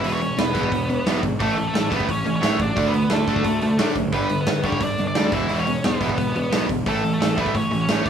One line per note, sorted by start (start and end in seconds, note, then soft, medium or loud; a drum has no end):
0.03 0.30 E1 loud
0.03 0.19 E2 medium
0.03 0.19 B2 medium
0.03 0.20 E3 loud
0.03 open hi-hat medium
0.07 0.13 B4 medium
0.13 0.37 C#4 medium
0.13 0.39 C#5 medium
0.20 0.36 E2 medium
0.20 0.36 B2 medium
0.20 open hi-hat medium
0.37 0.51 E1 medium
0.37 0.52 E2 medium
0.37 0.53 B2 medium
0.37 1.20 B3 medium
0.37 1.20 B4 loud
0.37 snare loud
0.37 open hi-hat medium
0.53 0.68 E1 medium
0.53 0.69 E2 medium
0.53 0.69 B2 loud
0.53 0.71 E3 loud
0.53 kick medium
0.53 open hi-hat medium
0.63 kick medium
0.70 0.98 E1 loud
0.70 0.86 E2 medium
0.70 0.87 B2 medium
0.70 kick medium
0.70 open hi-hat medium
0.89 1.04 E2 medium
0.89 1.05 B2 medium
0.89 open hi-hat medium
1.06 1.19 B1 medium
1.06 1.22 E2 medium
1.06 1.22 B2 medium
1.06 1.23 E3 loud
1.06 snare loud
1.06 open hi-hat medium
1.23 1.36 G#1 medium
1.23 1.39 E2 medium
1.23 1.39 B2 medium
1.23 kick medium
1.23 open hi-hat medium
1.40 1.67 A1 loud
1.40 1.56 A2 medium
1.40 1.56 E3 medium
1.40 1.64 A3 medium
1.40 1.57 A3 medium
1.40 1.65 A4 medium
1.40 kick loud
1.40 open hi-hat medium
1.57 1.73 A2 medium
1.57 1.73 E3 medium
1.57 open hi-hat soft
1.67 1.90 A3 medium
1.67 1.93 A4 medium
1.74 2.01 A1 medium
1.74 1.89 A2 medium
1.74 1.89 E3 medium
1.74 snare loud
1.74 open hi-hat medium
1.90 2.07 A2 medium
1.90 2.07 E3 loud
1.90 2.07 A3 loud
1.90 2.08 B3 medium
1.90 kick medium
1.90 open hi-hat medium
1.94 2.11 B4 medium
2.00 kick medium
2.08 2.22 A1 medium
2.08 2.23 A2 medium
2.08 2.24 E3 medium
2.08 2.33 C#4 medium
2.08 2.35 C#5 loud
2.08 kick medium
2.08 open hi-hat medium
2.25 2.38 A1 medium
2.25 2.40 A2 medium
2.25 2.41 E3 loud
2.25 open hi-hat soft
2.35 2.58 C#4 medium
2.35 2.61 C#5 loud
2.41 2.69 A1 medium
2.41 2.58 A2 medium
2.41 2.58 E3 loud
2.41 2.58 A3 medium
2.41 snare loud
2.41 open hi-hat medium
2.59 2.75 A2 medium
2.59 2.75 E3 medium
2.59 2.84 D4 medium
2.59 2.87 D5 loud
2.59 kick medium
2.59 open hi-hat medium
2.76 3.03 D2 loud
2.76 2.92 D3 medium
2.76 2.92 A3 medium
2.76 2.93 D4 loud
2.76 kick loud
2.76 open hi-hat medium
2.87 3.10 B3 medium
2.87 3.13 B4 medium
2.94 3.09 D3 medium
2.94 3.09 A3 medium
2.94 open hi-hat medium
3.10 3.24 D2 medium
3.10 3.26 D3 medium
3.10 3.26 A3 medium
3.10 3.93 A3 medium
3.10 3.93 A4 medium
3.10 snare loud
3.10 open hi-hat medium
3.28 3.41 D2 medium
3.28 3.44 D3 medium
3.28 3.44 A3 loud
3.28 3.44 D4 loud
3.28 kick medium
3.28 open hi-hat medium
3.36 kick medium
3.44 3.71 D2 medium
3.44 3.60 D3 medium
3.44 3.60 A3 medium
3.44 kick loud
3.44 open hi-hat medium
3.61 3.77 D3 medium
3.61 3.77 A3 medium
3.61 open hi-hat medium
3.79 3.92 A2 medium
3.79 3.95 D3 medium
3.79 3.95 A3 loud
3.79 3.95 D4 loud
3.79 snare loud
3.79 open hi-hat medium
3.95 4.13 F#1 medium
3.95 4.11 D3 medium
3.95 4.11 A3 medium
3.95 kick medium
3.95 open hi-hat medium
4.12 4.39 G1 loud
4.12 4.29 G2 medium
4.12 4.29 D3 medium
4.12 4.29 G3 medium
4.12 4.36 B3 medium
4.12 4.40 B4 medium
4.12 kick loud
4.12 open hi-hat medium
4.29 4.45 G2 medium
4.29 4.45 D3 medium
4.29 open hi-hat medium
4.40 4.63 B3 medium
4.40 4.66 B4 medium
4.46 4.73 G1 medium
4.46 4.63 G2 medium
4.46 4.63 D3 medium
4.46 snare loud
4.46 open hi-hat medium
4.63 4.80 G2 medium
4.63 4.80 D3 medium
4.63 4.80 G3 loud
4.63 4.80 C#4 medium
4.63 4.83 C#5 medium
4.63 kick medium
4.63 open hi-hat medium
4.72 kick medium
4.80 4.94 G1 medium
4.80 4.97 G2 medium
4.80 4.97 D3 medium
4.80 5.05 D4 medium
4.80 5.07 D5 medium
4.80 kick loud
4.80 open hi-hat medium
4.98 5.11 G1 medium
4.98 5.14 G2 medium
4.98 5.14 D3 medium
4.98 open hi-hat medium
5.07 5.31 D4 medium
5.07 5.34 D5 loud
5.15 5.29 D2 medium
5.15 5.31 G2 medium
5.15 5.32 D3 medium
5.15 5.32 G3 medium
5.15 snare loud
5.15 open hi-hat medium
5.32 5.45 E1 medium
5.32 5.48 E2 medium
5.32 5.49 B2 medium
5.32 5.49 E3 loud
5.32 5.56 E4 medium
5.32 5.59 E5 loud
5.32 kick loud
5.32 open hi-hat medium
5.49 5.75 E1 loud
5.49 5.65 E2 medium
5.49 5.65 B2 medium
5.49 5.66 E3 medium
5.49 open hi-hat medium
5.59 5.82 C#4 medium
5.59 5.85 C#5 medium
5.67 5.82 E2 medium
5.67 5.82 B2 medium
5.67 open hi-hat medium
5.84 5.97 E1 medium
5.84 5.99 E2 medium
5.84 5.99 B2 medium
5.84 6.65 B3 medium
5.84 6.66 B4 loud
5.84 snare loud
5.84 open hi-hat medium
6.01 6.14 E1 medium
6.01 6.16 E2 medium
6.01 6.17 B2 loud
6.01 6.17 E3 loud
6.01 kick medium
6.01 open hi-hat medium
6.09 kick medium
6.18 6.45 E1 loud
6.18 6.33 E2 medium
6.18 6.33 B2 medium
6.18 kick loud
6.18 open hi-hat medium
6.35 6.50 E2 medium
6.35 6.50 B2 medium
6.35 open hi-hat medium
6.51 6.65 B1 medium
6.51 6.67 E2 medium
6.51 6.68 B2 loud
6.51 6.68 E3 loud
6.51 snare loud
6.51 open hi-hat medium
6.69 6.82 E1 medium
6.69 6.84 E2 medium
6.69 6.84 B2 medium
6.69 kick medium
6.69 open hi-hat medium
6.86 7.13 A1 loud
6.86 7.02 A2 medium
6.86 7.02 E3 medium
6.86 7.02 A3 medium
6.86 7.11 A3 medium
6.86 7.13 A4 medium
6.86 kick loud
6.86 open hi-hat medium
7.04 7.18 A2 medium
7.04 7.19 E3 medium
7.04 open hi-hat medium
7.13 7.36 A3 medium
7.13 7.39 A4 medium
7.20 7.46 A1 medium
7.20 7.35 A2 medium
7.20 7.35 E3 medium
7.20 snare loud
7.20 open hi-hat medium
7.36 7.53 A2 medium
7.36 7.53 E3 medium
7.36 7.53 A3 loud
7.36 7.54 B3 medium
7.36 7.57 B4 medium
7.36 kick medium
7.36 open hi-hat medium
7.46 kick medium
7.55 7.68 A1 medium
7.55 7.70 A2 medium
7.55 7.70 E3 medium
7.55 7.78 C#4 medium
7.55 7.80 C#5 medium
7.55 kick medium
7.55 open hi-hat medium
7.71 7.84 A1 loud
7.71 7.86 A2 medium
7.71 7.87 E3 medium
7.71 open hi-hat medium
7.80 8.03 C#4 medium
7.80 8.04 C#5 loud
7.88 8.10 A1 medium
7.88 8.04 A2 loud
7.88 8.05 E3 medium
7.88 8.05 A3 loud
7.88 snare loud
7.88 open hi-hat medium
8.06 8.10 A2 medium
8.06 8.10 D4 medium
8.06 kick medium
8.06 open hi-hat medium